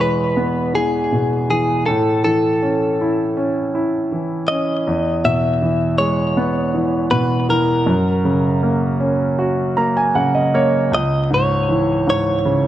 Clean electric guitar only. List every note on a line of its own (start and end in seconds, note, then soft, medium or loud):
0.01 0.75 B4 medium
0.75 1.49 G#4 medium
1.50 1.86 G#4 medium
1.86 2.23 A4 medium
2.24 4.56 A4 medium
4.48 5.25 D#5 medium
5.25 5.95 E5 medium
5.98 7.11 C#5 medium
7.11 7.46 B4 medium
7.50 10.13 A#4 medium
10.95 11.29 D#5 medium
11.34 12.09 C#5 medium
12.10 12.67 C#5 medium